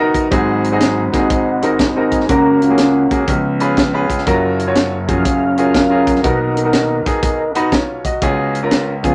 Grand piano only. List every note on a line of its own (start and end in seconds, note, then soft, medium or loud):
0.00 0.28 F#1 medium
0.00 0.28 F#2 medium
0.00 0.25 B3 medium
0.00 0.25 D#4 medium
0.00 0.25 F#4 medium
0.00 0.25 A#4 medium
0.31 2.25 G#1 medium
0.31 2.25 G#2 medium
0.31 0.66 C4 medium
0.31 0.66 D#4 medium
0.31 0.66 F#4 medium
0.31 0.66 G#4 loud
0.72 1.01 C4 medium
0.72 1.01 D#4 medium
0.72 1.01 F#4 medium
0.72 1.01 G#4 medium
1.13 1.17 A#3 medium
1.13 1.46 D#4 medium
1.13 1.46 F#4 medium
1.13 1.47 G#4 medium
1.19 1.49 C4 medium
1.62 1.83 C4 medium
1.62 1.83 D#4 medium
1.62 1.84 F#4 medium
1.62 1.84 A#4 medium
1.96 2.23 C4 medium
1.96 2.23 D#4 medium
1.96 2.23 F#4 medium
1.96 2.23 A#4 medium
2.29 3.24 C#2 medium
2.29 3.24 C#3 medium
2.29 2.63 A#3 medium
2.29 2.64 C#4 medium
2.29 2.64 F#4 medium
2.29 2.64 A#4 medium
2.69 2.98 A#3 medium
2.69 2.98 C#4 medium
2.69 2.99 F#4 medium
2.69 2.99 G#4 medium
3.10 3.27 A#3 medium
3.10 3.28 C#4 medium
3.10 3.28 F#4 medium
3.10 3.28 G#4 medium
3.28 4.23 C#2 medium
3.28 4.23 C#3 medium
3.60 3.81 C#4 medium
3.60 3.81 F4 medium
3.60 3.81 G#4 medium
3.60 3.81 B4 medium
3.93 4.20 C#4 medium
3.93 4.20 F4 medium
3.93 4.21 G#4 medium
3.93 4.21 B4 medium
4.26 6.20 F#1 medium
4.26 6.20 F#2 medium
4.26 4.61 C#4 medium
4.26 4.61 F4 medium
4.26 4.61 F#4 medium
4.26 4.61 A#4 medium
4.67 4.96 C#4 medium
4.67 4.96 F4 medium
4.67 4.96 F#4 medium
4.67 4.96 C#5 medium
5.07 5.41 C#4 medium
5.07 5.41 F4 medium
5.07 5.41 F#4 medium
5.07 5.41 G#4 medium
5.57 5.78 C#4 medium
5.57 5.79 F4 medium
5.57 5.79 F#4 medium
5.57 5.79 G#4 medium
5.90 6.17 C#4 medium
5.90 6.17 F4 medium
5.90 6.18 F#4 medium
5.90 6.18 G#4 medium
6.23 8.18 B1 medium
6.23 8.18 B2 medium
6.23 6.58 B3 medium
6.23 6.58 D#4 medium
6.23 6.58 F#4 medium
6.23 6.59 A#4 medium
6.64 6.93 B3 medium
6.64 6.93 D#4 medium
6.64 6.94 F#4 medium
6.64 6.94 A#4 medium
7.05 7.38 B3 medium
7.05 7.39 D#4 medium
7.05 7.39 F#4 medium
7.05 7.39 G#4 medium
7.55 7.76 B3 medium
7.55 7.76 D#4 medium
7.55 7.73 F#4 medium
7.55 7.73 B4 loud
7.72 8.03 F4 medium
7.72 8.03 C#5 medium
8.05 8.52 F#4 medium
8.05 8.52 D#5 medium
8.22 9.15 C#2 medium
8.22 9.15 C#3 medium
8.22 8.56 B3 medium
8.22 8.56 C#4 medium
8.22 8.57 F4 medium
8.22 8.57 G#4 medium
8.62 8.91 B3 medium
8.62 8.91 C#4 medium
8.62 8.91 F4 medium
8.62 8.92 A#4 medium
9.03 9.15 B3 medium
9.03 9.15 C#4 medium
9.03 9.15 F4 medium
9.03 9.15 G#4 medium